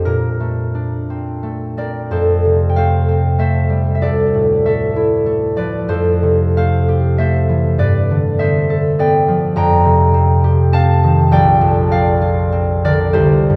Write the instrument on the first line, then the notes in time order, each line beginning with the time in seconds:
harp
Already playing: D4 A4 C5 F5
0.05 A#2 A#4
0.40 A3
0.75 D4
1.10 C4
1.43 A3
1.77 C4 A#4 D5
2.11 F2 A4 C5
2.45 C3
2.69 G5
2.76 A3 C5 F5
3.08 C4
3.38 A3 C5 E5
3.70 G3
3.95 E5
4.01 D2 A4 D5
4.34 A2
4.66 A3 A4 E5
4.96 E4
5.26 A3
5.56 F3 B4 D5
5.89 F2 A4 C5
6.23 C3
6.56 A3 C5 F5
6.88 G4
7.18 A3 C5 E5
7.49 E3
7.78 G2 B4 D5
8.11 D3
8.39 B3 C5 E5
8.70 A4
8.99 B3 D5 G5
9.28 F3
9.56 F2 G5 A#5
9.85 C3
10.14 C4
10.44 G4
10.73 C4 F5 A5
11.03 D#3
11.31 A#1 D5 G5
11.61 F2
11.91 C4 D5 F5
12.21 F4
12.52 C4
12.84 D3 A#4 D5
13.13 C2 G4 C5
13.50 G2